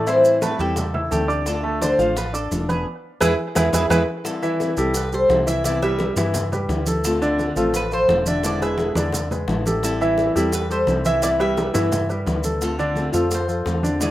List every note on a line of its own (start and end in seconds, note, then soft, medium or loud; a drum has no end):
0.00 0.54 A2 medium
0.06 0.35 E3 medium
0.06 0.40 E3 medium
0.06 0.41 G3 medium
0.06 0.41 C4 medium
0.06 0.35 E4 medium
0.06 0.41 E4 medium
0.06 0.42 C5 medium
0.06 0.36 E5 medium
0.06 high bongo medium
0.06 maracas medium
0.24 high bongo soft
0.24 high conga soft
0.24 maracas medium
0.41 0.58 E3 medium
0.41 0.59 G3 soft
0.41 0.56 A3 medium
0.41 0.59 C4 medium
0.41 0.58 E4 medium
0.41 0.56 A4 medium
0.41 0.60 B4 medium
0.41 0.56 A5 medium
0.41 high bongo medium
0.41 high conga medium
0.41 maracas medium
0.59 1.08 E2 medium
0.59 0.88 G3 medium
0.59 0.77 G3 medium
0.59 0.76 C4 medium
0.59 0.76 E4 medium
0.59 0.88 G4 medium
0.59 1.09 A4 medium
0.59 0.88 G5 medium
0.59 high conga soft
0.59 maracas soft
0.76 muted nylon-string guitar stroke medium
0.76 high bongo medium
0.76 high conga soft
0.76 low conga medium
0.76 maracas medium
0.94 1.08 E4 medium
0.94 1.08 E5 medium
0.94 1.09 E6 medium
0.94 high bongo soft
0.94 high conga soft
0.94 low conga medium
1.11 1.93 D2 medium
1.11 1.46 E3 medium
1.11 1.46 G3 medium
1.11 1.25 A3 medium
1.11 1.46 C4 medium
1.11 1.47 E4 medium
1.11 1.47 G4 medium
1.11 1.26 A4 medium
1.11 1.26 A5 medium
1.11 high bongo soft
1.11 low bongo medium
1.11 high conga medium
1.11 maracas medium
1.28 1.57 D4 medium
1.28 1.57 D5 medium
1.28 1.57 D6 medium
1.28 high conga soft
1.28 maracas soft
1.46 1.81 D3 medium
1.46 1.81 A3 medium
1.46 1.81 D4 medium
1.46 1.82 F4 medium
1.46 1.79 A4 medium
1.46 high bongo medium
1.46 high conga soft
1.46 maracas medium
1.63 1.78 A3 medium
1.63 1.78 A4 medium
1.63 1.78 A5 medium
1.63 high bongo soft
1.63 high conga soft
1.81 1.95 D3 medium
1.81 1.98 D3 medium
1.81 1.99 A3 soft
1.81 1.96 D4 medium
1.81 1.99 D4 medium
1.81 1.98 F4 medium
1.81 2.17 C5 medium
1.81 1.96 D5 medium
1.81 high bongo medium
1.81 high conga medium
1.81 maracas medium
1.98 2.47 A1 medium
1.98 2.27 F3 medium
1.98 2.16 A3 medium
1.98 2.16 D4 medium
1.98 2.16 F4 medium
1.98 2.28 F4 medium
1.98 2.28 F5 medium
1.98 high conga soft
1.98 maracas soft
2.17 2.33 B4 medium
2.17 muted nylon-string guitar stroke medium
2.17 high bongo medium
2.17 high conga soft
2.17 maracas medium
2.33 2.62 D4 medium
2.33 2.69 A4 medium
2.33 2.62 D5 medium
2.33 2.62 D6 medium
2.33 high bongo soft
2.33 high conga soft
2.33 maracas medium
2.51 2.84 E1 medium
2.51 2.85 D3 soft
2.51 2.86 A3 medium
2.51 2.86 D4 medium
2.51 2.86 F4 medium
2.51 high bongo soft
2.51 low bongo medium
2.51 high conga medium
2.51 maracas medium
2.69 2.83 B3 medium
2.69 2.85 G#4 medium
2.69 2.83 B4 medium
2.69 2.83 B5 medium
2.69 high conga medium
2.69 maracas soft
3.21 3.34 E2 medium
3.21 3.32 E3 medium
3.21 3.32 G#3 medium
3.21 3.32 B3 medium
3.21 3.32 E4 loud
3.21 3.32 G#4 loud
3.21 3.33 G#4 medium
3.21 3.32 B4 loud
3.21 3.33 B4 medium
3.21 high bongo medium
3.21 high conga medium
3.21 maracas loud
3.55 3.69 E2 medium
3.55 3.67 E3 loud
3.55 3.67 G#3 medium
3.55 3.67 B3 medium
3.55 3.67 E4 medium
3.55 3.68 E4 medium
3.55 3.67 G#4 medium
3.55 3.68 G#4 medium
3.55 3.67 B4 loud
3.55 3.68 B4 medium
3.55 high bongo medium
3.55 high conga loud
3.55 maracas medium
3.72 3.86 E2 medium
3.72 3.84 E3 medium
3.72 3.84 G#3 medium
3.72 3.84 B3 medium
3.72 3.85 E4 medium
3.72 3.85 G#4 medium
3.72 3.85 B4 medium
3.72 high bongo medium
3.72 high conga loud
3.72 maracas loud
3.90 4.03 E2 loud
3.90 4.01 E3 medium
3.90 4.01 G#3 loud
3.90 4.01 B3 medium
3.90 4.02 E4 medium
3.90 4.01 E4 medium
3.90 4.02 G#4 medium
3.90 4.02 B4 loud
3.90 4.02 B4 medium
3.90 high bongo medium
3.90 high conga medium
3.90 maracas medium
4.24 4.58 E3 medium
4.24 4.59 G3 medium
4.24 4.60 C4 medium
4.24 4.60 E4 medium
4.24 4.91 A4 medium
4.24 high bongo medium
4.24 high conga soft
4.24 maracas medium
4.42 4.71 E3 medium
4.42 4.71 E4 medium
4.42 4.71 E5 loud
4.42 high conga soft
4.42 maracas soft
4.59 4.77 E3 soft
4.59 4.77 G3 medium
4.59 4.77 C4 medium
4.59 4.76 E4 medium
4.59 high bongo medium
4.59 high conga medium
4.59 maracas soft
4.77 5.26 C2 medium
4.77 5.06 G3 medium
4.77 4.94 G3 medium
4.77 4.95 C4 medium
4.77 4.94 E4 medium
4.77 5.06 G4 medium
4.77 5.06 A4 medium
4.77 high conga soft
4.77 maracas medium
4.94 5.12 B4 medium
4.94 muted nylon-string guitar stroke medium
4.94 high bongo medium
4.94 high conga soft
4.94 maracas medium
5.12 5.41 G3 medium
5.12 5.41 G4 medium
5.12 5.42 A4 medium
5.12 5.47 C5 medium
5.12 high conga soft
5.12 maracas soft
5.29 6.11 C2 loud
5.29 5.64 E3 medium
5.29 5.64 G3 medium
5.29 5.65 C4 medium
5.29 5.64 E4 medium
5.29 high bongo medium
5.29 low bongo medium
5.29 high conga medium
5.29 maracas soft
5.47 5.61 E3 medium
5.47 5.61 E4 medium
5.47 5.62 E5 medium
5.47 5.65 E5 loud
5.47 high conga medium
5.47 maracas medium
5.64 5.99 C3 medium
5.64 5.79 E3 medium
5.64 5.98 E3 medium
5.64 5.98 G3 medium
5.64 5.99 B3 medium
5.64 5.79 E4 medium
5.64 5.99 E4 medium
5.64 5.82 D5 loud
5.64 5.79 E5 medium
5.64 high bongo medium
5.64 high conga soft
5.64 maracas medium
5.82 6.11 G3 medium
5.82 6.11 G4 medium
5.82 6.11 B4 medium
5.82 6.83 E5 loud
5.82 high conga soft
5.82 maracas soft
5.99 6.16 E3 soft
5.99 6.16 G3 medium
5.99 6.16 B3 medium
5.99 6.15 E4 soft
5.99 high bongo medium
5.99 high conga medium
5.99 maracas soft
6.16 6.65 G2 medium
6.16 6.46 E3 medium
6.16 6.34 E3 medium
6.16 6.34 G3 medium
6.16 6.34 B3 medium
6.16 6.33 E4 medium
6.16 6.46 E4 medium
6.16 6.46 E5 medium
6.16 high bongo soft
6.16 high conga loud
6.16 maracas medium
6.34 muted nylon-string guitar stroke medium
6.34 high bongo medium
6.34 high conga soft
6.34 low conga medium
6.34 maracas medium
6.52 6.81 G3 medium
6.52 6.81 G4 medium
6.52 6.81 B4 medium
6.52 high bongo soft
6.52 high conga soft
6.52 low conga medium
6.52 maracas soft
6.69 7.50 D2 loud
6.69 7.03 E3 medium
6.69 7.03 G3 soft
6.69 7.04 B3 medium
6.69 7.04 E4 medium
6.69 high bongo medium
6.69 low bongo medium
6.69 high conga medium
6.69 maracas soft
6.86 7.16 A4 medium
6.86 high bongo soft
6.86 high conga medium
6.86 maracas medium
7.04 7.39 D3 medium
7.04 7.39 A3 medium
7.04 7.39 C4 medium
7.04 7.39 F4 medium
7.04 7.76 A4 medium
7.04 high bongo medium
7.04 high conga soft
7.04 maracas medium
7.21 7.50 D3 loud
7.21 7.50 D4 loud
7.21 7.51 D5 medium
7.21 high conga soft
7.21 maracas soft
7.38 7.56 D3 medium
7.38 7.56 A3 soft
7.38 7.56 C4 soft
7.38 7.55 F4 medium
7.38 high bongo medium
7.38 high conga medium
7.38 maracas soft
7.56 8.05 A1 medium
7.56 7.85 F3 medium
7.56 7.74 A3 medium
7.56 7.74 C4 medium
7.56 7.73 F4 medium
7.56 7.85 F4 medium
7.56 7.85 A4 medium
7.56 maracas medium
7.74 7.93 B4 loud
7.74 muted nylon-string guitar stroke medium
7.74 high bongo medium
7.74 high conga soft
7.74 maracas medium
7.91 8.20 F3 medium
7.91 8.20 F4 medium
7.91 8.21 A4 medium
7.91 8.25 C5 medium
7.91 high conga soft
7.91 maracas soft
8.08 8.90 E1 loud
8.08 8.42 D3 medium
8.08 8.43 A3 medium
8.08 8.43 C4 medium
8.08 8.44 F4 medium
8.08 high bongo medium
8.08 low bongo medium
8.08 high conga medium
8.08 maracas soft
8.26 8.41 D3 medium
8.26 8.41 D4 medium
8.26 8.41 D5 medium
8.26 8.45 E5 medium
8.26 high conga medium
8.26 maracas medium
8.43 8.77 B2 medium
8.43 8.77 D3 medium
8.43 8.58 D3 medium
8.43 8.77 G#3 medium
8.43 8.78 B3 medium
8.43 8.58 D4 medium
8.43 8.78 E4 medium
8.43 8.59 D5 medium
8.43 8.62 D5 loud
8.43 high bongo medium
8.43 high conga soft
8.43 maracas medium
8.61 8.90 G#3 medium
8.61 8.90 G#4 medium
8.61 8.90 B4 medium
8.61 9.62 E5 loud
8.61 high conga soft
8.61 maracas soft
8.78 8.95 D3 medium
8.78 8.95 G#3 medium
8.78 8.95 B3 medium
8.78 8.94 E4 soft
8.78 high bongo medium
8.78 high conga medium
8.78 maracas soft
8.95 9.44 E2 medium
8.95 9.25 D3 medium
8.95 9.12 D3 medium
8.95 9.11 G#3 medium
8.95 9.12 B3 medium
8.95 9.25 D4 medium
8.95 9.12 E4 medium
8.95 9.25 D5 medium
8.95 high bongo soft
8.95 high conga loud
8.95 maracas medium
9.12 muted nylon-string guitar stroke medium
9.12 high bongo medium
9.12 high conga soft
9.12 low conga medium
9.12 maracas medium
9.31 9.59 G#3 medium
9.31 9.60 G#4 medium
9.31 9.60 B4 medium
9.31 high bongo soft
9.31 high conga soft
9.31 low conga medium
9.31 maracas soft
9.47 10.29 A1 medium
9.47 9.82 D3 medium
9.47 9.82 G#3 soft
9.47 9.82 B3 medium
9.47 9.83 E4 medium
9.47 high bongo medium
9.47 low bongo medium
9.47 high conga medium
9.47 maracas soft
9.66 9.95 G4 medium
9.66 9.95 A4 medium
9.66 high bongo soft
9.66 high conga medium
9.66 maracas medium
9.82 10.17 E3 medium
9.82 10.17 G3 medium
9.82 10.17 C4 medium
9.82 10.18 E4 medium
9.82 10.54 A4 loud
9.82 high bongo medium
9.82 high conga soft
9.82 maracas medium
10.01 10.29 E3 medium
10.01 10.29 E4 medium
10.01 10.30 E5 loud
10.01 high conga soft
10.01 maracas soft
10.18 10.35 E3 soft
10.18 10.35 G3 medium
10.18 10.35 C4 medium
10.18 10.35 E4 medium
10.18 high bongo medium
10.18 high conga soft
10.18 maracas soft
10.35 10.84 E2 medium
10.35 10.64 G3 medium
10.35 10.52 G3 medium
10.35 10.52 C4 medium
10.35 10.52 E4 medium
10.35 10.64 G4 medium
10.35 10.64 A4 medium
10.35 high conga soft
10.35 maracas medium
10.52 10.71 B4 medium
10.52 muted nylon-string guitar stroke medium
10.52 high bongo medium
10.52 high conga soft
10.52 maracas medium
10.70 10.99 G3 medium
10.70 10.99 G4 medium
10.70 10.99 A4 medium
10.70 11.07 C5 medium
10.70 high conga soft
10.70 maracas soft
10.87 11.69 C2 medium
10.87 11.22 E3 medium
10.87 11.22 G3 medium
10.87 11.22 C4 medium
10.87 11.22 E4 medium
10.87 high bongo medium
10.87 low bongo medium
10.87 high conga medium
10.87 maracas soft
11.05 11.19 E3 medium
11.05 11.20 E4 medium
11.05 11.20 E5 medium
11.05 11.23 E5 loud
11.05 high conga medium
11.05 maracas medium
11.22 11.57 C3 medium
11.22 11.37 E3 medium
11.22 11.55 E3 medium
11.22 11.57 G3 medium
11.22 11.57 B3 medium
11.22 11.37 E4 medium
11.22 11.57 E4 medium
11.22 11.28 D5 loud
11.22 11.37 E5 medium
11.22 high bongo medium
11.22 high conga soft
11.22 maracas medium
11.39 11.68 G3 medium
11.39 11.68 G4 medium
11.39 11.68 B4 medium
11.39 12.41 E5 loud
11.39 high conga soft
11.39 maracas soft
11.57 11.74 E3 soft
11.57 11.74 G3 soft
11.57 11.73 B3 medium
11.57 11.72 E4 medium
11.57 high bongo medium
11.57 high conga medium
11.57 maracas soft
11.73 12.23 G2 medium
11.73 12.03 E3 medium
11.73 11.91 E3 soft
11.73 11.92 G3 medium
11.73 11.91 B3 medium
11.73 11.91 E4 medium
11.73 12.03 E4 medium
11.73 12.03 E5 medium
11.73 high bongo soft
11.73 high conga loud
11.73 maracas medium
11.92 muted nylon-string guitar stroke medium
11.92 high bongo medium
11.92 high conga soft
11.92 low conga medium
11.92 maracas medium
12.09 12.38 G3 medium
12.09 12.38 G4 medium
12.09 12.38 B4 medium
12.09 high bongo soft
12.09 high conga soft
12.09 maracas soft
12.26 13.08 D2 loud
12.26 12.60 E3 medium
12.26 12.61 G3 medium
12.26 12.61 B3 medium
12.26 12.61 E4 medium
12.26 high bongo medium
12.26 low bongo medium
12.26 high conga medium
12.26 maracas soft
12.44 12.73 A4 medium
12.44 high bongo soft
12.44 high conga medium
12.44 maracas medium
12.61 12.95 D3 medium
12.61 12.95 A3 medium
12.61 12.96 C4 medium
12.61 12.96 F4 medium
12.61 13.28 A4 medium
12.61 high bongo medium
12.61 maracas medium
12.79 13.07 D3 loud
12.79 13.08 D4 medium
12.79 13.08 D5 medium
12.79 high conga soft
12.79 maracas soft
12.96 13.13 D3 medium
12.96 13.12 A3 medium
12.96 13.12 C4 medium
12.96 13.11 F4 medium
12.96 high bongo medium
12.96 high conga medium
12.96 maracas soft
13.12 13.62 F2 medium
13.12 13.42 F3 medium
13.12 13.29 A3 medium
13.12 13.29 C4 medium
13.12 13.30 F4 medium
13.12 13.43 F4 medium
13.12 13.43 A4 medium
13.12 high conga soft
13.12 maracas medium
13.30 muted nylon-string guitar stroke medium
13.30 high bongo medium
13.30 high conga soft
13.30 maracas medium
13.34 14.05 C5 medium
13.48 13.77 F3 medium
13.48 13.77 F4 medium
13.48 13.77 A4 medium
13.48 high conga soft
13.48 maracas soft
13.65 14.11 E2 medium
13.65 13.99 D3 medium
13.65 14.00 A3 medium
13.65 14.00 C4 medium
13.65 14.01 F4 medium
13.65 high bongo medium
13.65 low bongo medium
13.65 high conga medium
13.65 maracas soft
13.83 13.98 D3 medium
13.83 13.98 D4 medium
13.83 13.98 D5 medium
13.83 high conga medium
13.83 maracas medium
14.00 14.11 B2 medium
14.00 14.11 D3 medium
14.00 14.11 G#3 medium
14.00 14.11 B3 medium
14.00 14.11 D4 medium
14.00 14.11 E4 medium
14.00 14.11 G#4 medium
14.00 14.11 D5 medium
14.00 high bongo medium
14.00 high conga soft
14.00 maracas medium